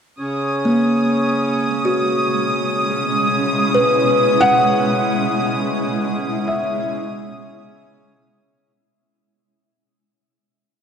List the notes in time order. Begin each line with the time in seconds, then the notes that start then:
0.19 B2 C#3 C#4 D#6
0.40 G#3
0.65 A#3
1.00 C#4
1.77 E4
1.85 F#4
3.75 B4
4.41 F#5
6.48 E5